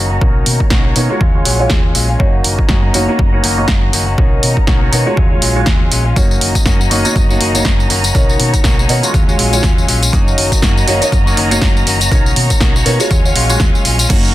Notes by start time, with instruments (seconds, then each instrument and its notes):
Already playing: fingered electric bass F#1, clean electric guitar D#3 A#3, violin section F#4 D#5 A#5
0.10 clean electric guitar A#3 C#4 F#4
0.21 fingered electric bass B1, clean electric guitar D#3 A#3 C#4 F#4, grand piano D#4 A#4 C#5, violin section D#4 C#5, kick
0.46 fingered electric bass B2, open hi-hat
0.60 muted fingered electric bass stroke, kick
0.70 fingered electric bass B1, clean electric guitar D#3 A#3 C#4 F#4, kick, snare
0.84 clean electric guitar A#3 C#4 F#4
0.95 fingered electric bass B2, clean electric guitar D#3 A#3 C#4 F#4, grand piano B3 D#4 A#4 C#5, open hi-hat
1.09 grand piano G#3 F4 F#4 C#5, clean electric guitar A#3 C#4 F#4
1.20 fingered electric bass D#2, clean electric guitar F#3 G#3 C#4 F4, violin section F5 G#5, kick
1.34 grand piano G#3 F4 F#4 C#5, clean electric guitar G#3 C#4 F4
1.44 fingered electric bass A#1, clean electric guitar F#3 G#3 C#4 F4, open hi-hat
1.59 grand piano G#3 F4 F#4 C#5
1.70 clean electric guitar F#3 G#3 C#4 F4, kick, snare
1.94 fingered electric bass A#1, clean electric guitar F#3 G#3 C#4 F4, open hi-hat
2.09 clean electric guitar G#3 C#4 F4
2.19 fingered electric bass F#2, clean electric guitar D#3 A#3 C#4 F#4, grand piano A#3 D#4 F#4 C#5, violin section D#5 A#5, kick
2.44 fingered electric bass F#1, open hi-hat
2.59 muted fingered electric bass stroke, kick
2.69 fingered electric bass F#2, clean electric guitar D#3 A#3 C#4 F#4, kick, snare
2.83 clean electric guitar A#3 C#4 F#4
2.93 fingered electric bass F#1, clean electric guitar D#3 A#3 C#4 F#4, grand piano A#3 D#4 F#4 C#5, open hi-hat
3.08 grand piano A#3 D#4 F#4 C#5, clean electric guitar A#3 C#4 F#4
3.19 fingered electric bass F#2, kick
3.32 grand piano A#3 D#4 F#4 C#5, clean electric guitar A#3 C#4 F#4
3.43 fingered electric bass F#1, clean electric guitar D#3 A#3 C#4 F#4, open hi-hat
3.57 grand piano A#3 D#4 F#4 C#5
3.68 fingered electric bass F#2, clean electric guitar A#3 C#4, kick, snare
3.92 fingered electric bass F#1, clean electric guitar D#3 A#3 C#4 F#4, open hi-hat
4.06 clean electric guitar A#3 C#4 F#4
4.17 clean electric guitar D#3 A#3 C#4 F#4, grand piano D#4 A#4 C#5, violin section D#4 C#5 A#5, kick
4.43 fingered electric bass B2, open hi-hat
4.57 muted fingered electric bass stroke, kick
4.67 fingered electric bass B1, clean electric guitar D#3 A#3 C#4 F#4, kick, snare
4.81 clean electric guitar A#3 C#4 F#4
4.92 fingered electric bass B2, clean electric guitar D#3 A#3 C#4 F#4, grand piano B3 D#4 A#4 C#5, open hi-hat
5.06 grand piano G#3 F4 F#4 C#5, clean electric guitar A#3 C#4 F#4
5.17 fingered electric bass D#2, clean electric guitar F#3 G#3 C#4 F4, violin section F5 G#5, kick
5.31 grand piano G#3 F4 F#4 C#5, clean electric guitar G#3 C#4 F4
5.41 fingered electric bass A#1, clean electric guitar F#3 G#3 C#4 F4, open hi-hat
5.56 grand piano G#3 F4 F#4 C#5
5.66 clean electric guitar F#3 G#3 C#4 F4, kick, snare
5.91 fingered electric bass A#1, clean electric guitar F#3 G#3 C#4 F4, open hi-hat
6.05 clean electric guitar G#3 C#4 F4
6.16 fingered electric bass F#2, clean electric guitar D#3 A#3 C#4 F#4, grand piano A#3 D#4 F#4 C#5, violin section D#5 A#5, kick, closed hi-hat, tambourine
6.31 tambourine
6.41 fingered electric bass F#1, open hi-hat
6.55 muted fingered electric bass stroke, kick, closed hi-hat, tambourine
6.66 fingered electric bass F#2, clean electric guitar D#3 A#3 C#4 F#4, kick, snare, closed hi-hat, tambourine
6.80 clean electric guitar A#3 C#4 F#4, tambourine
6.90 fingered electric bass F#1, clean electric guitar D#3 A#3 C#4 F#4, grand piano A#3 D#4 F#4 C#5, open hi-hat
7.05 grand piano A#3 D#4 F#4 C#5, closed hi-hat, tambourine
7.16 fingered electric bass F#2, kick, closed hi-hat, tambourine
7.29 grand piano A#3 D#4 F#4 C#5, clean electric guitar A#3 C#4 F#4, tambourine
7.40 fingered electric bass F#1, clean electric guitar D#3 A#3 C#4 F#4, open hi-hat
7.54 grand piano A#3 D#4 F#4 C#5, closed hi-hat, tambourine
7.65 fingered electric bass F#2, clean electric guitar D#3 A#3 C#4 F#4, kick, snare, closed hi-hat
7.80 tambourine
7.89 fingered electric bass F#1, clean electric guitar D#3 A#3 C#4 F#4, open hi-hat
8.04 clean electric guitar A#3 C#4 F#4, closed hi-hat, tambourine
8.14 fingered electric bass B1, clean electric guitar D#3 A#3 C#4 F#4, grand piano D#4 A#4 C#5, violin section D#4 C#5, kick, closed hi-hat, tambourine
8.29 tambourine
8.40 fingered electric bass B2, open hi-hat
8.54 muted fingered electric bass stroke, kick, closed hi-hat, tambourine
8.64 fingered electric bass B1, clean electric guitar D#3 A#3 C#4 F#4, kick, snare, closed hi-hat, tambourine
8.78 clean electric guitar A#3 C#4 F#4, tambourine
8.88 fingered electric bass B2, clean electric guitar D#3 A#3 C#4 F#4, grand piano B3 D#4 A#4 C#5, open hi-hat
9.03 grand piano G#3 F4 F#4 C#5, closed hi-hat, tambourine
9.13 fingered electric bass D#2, clean electric guitar F#3 G#3 C#4 F4, violin section C#5 F5 G#5, kick, closed hi-hat, tambourine
9.27 grand piano G#3 F4 F#4 C#5, clean electric guitar G#3 C#4 F4, tambourine
9.38 fingered electric bass A#1, clean electric guitar F#3 G#3 C#4 F4, open hi-hat
9.53 grand piano G#3 F4 F#4 C#5, closed hi-hat, tambourine
9.63 clean electric guitar F#3 G#3 C#4 F4, kick, snare, closed hi-hat, tambourine
9.78 tambourine
9.87 fingered electric bass A#1, clean electric guitar F#3 G#3 C#4 F4, open hi-hat
10.02 clean electric guitar G#3 C#4 F4, closed hi-hat, tambourine
10.12 fingered electric bass F#2, clean electric guitar D#3 A#3 C#4 F#4, grand piano A#3 D#4 F#4 C#5, violin section D#5 A#5, kick, closed hi-hat, tambourine
10.28 tambourine
10.38 fingered electric bass F#1, open hi-hat
10.52 muted fingered electric bass stroke, kick, closed hi-hat, tambourine
10.62 fingered electric bass F#2, clean electric guitar D#3 A#3 C#4 F#4, kick, snare, closed hi-hat, tambourine
10.76 clean electric guitar A#3 C#4 F#4, tambourine
10.87 fingered electric bass F#1, clean electric guitar D#3 A#3 C#4 F#4, grand piano A#3 D#4 F#4 C#5, open hi-hat
11.01 grand piano A#3 D#4 F#4 C#5, closed hi-hat, tambourine
11.12 fingered electric bass F#2, kick, closed hi-hat, tambourine
11.26 grand piano A#3 D#4 F#4 C#5, clean electric guitar A#3 C#4 F#4, tambourine
11.36 fingered electric bass F#1, clean electric guitar D#3 A#3 C#4 F#4, open hi-hat
11.50 grand piano A#3 D#4 F#4 C#5, clean electric guitar A#3 C#4 F#4, closed hi-hat, tambourine
11.61 fingered electric bass F#2, clean electric guitar D#3 A#3 C#4 F#4, kick, snare, closed hi-hat
11.77 tambourine
11.86 fingered electric bass F#1, clean electric guitar D#3 A#3 C#4 F#4, open hi-hat
12.00 clean electric guitar A#3 C#4 F#4, closed hi-hat, tambourine
12.11 fingered electric bass B1, clean electric guitar D#3 A#3 C#4 F#4, grand piano D#4 A#4 C#5, violin section D#4 C#5, kick, closed hi-hat, tambourine
12.26 tambourine
12.36 fingered electric bass B2, open hi-hat
12.50 muted fingered electric bass stroke, kick, closed hi-hat, tambourine
12.60 fingered electric bass B1, clean electric guitar D#3 A#3 C#4 F#4, kick, snare, closed hi-hat, tambourine
12.74 clean electric guitar A#3 C#4 F#4, tambourine
12.85 fingered electric bass B2, clean electric guitar D#3 A#3 C#4 F#4, grand piano B3 D#4 A#4 C#5, open hi-hat
12.99 grand piano G#3 F4 F#4 C#5, clean electric guitar C#4 F#4, open hi-hat, tambourine
13.10 fingered electric bass D#2, clean electric guitar F#3 G#3 C#4 F4, violin section F5 G#5, kick, closed hi-hat, tambourine
13.24 grand piano G#3 F4 F#4 C#5, clean electric guitar G#3 C#4 F4, tambourine
13.35 fingered electric bass A#1, clean electric guitar F#3 G#3 C#4 F4, open hi-hat
13.49 grand piano G#3 F4 F#4 C#5, closed hi-hat, tambourine
13.60 clean electric guitar F#3 G#3 C#4 F4, kick, snare, closed hi-hat
13.75 tambourine
13.84 fingered electric bass A#1, clean electric guitar F#3 G#3 C#4 F4, open hi-hat
13.98 clean electric guitar G#3 C#4 F4, closed hi-hat, tambourine
14.09 fingered electric bass F#2, clean electric guitar D#3 A#3 C#4 F#4, grand piano A#3 D#4 F#4 C#5, violin section F#4 D#5 A#5, kick, closed hi-hat, tambourine, crash
14.24 tambourine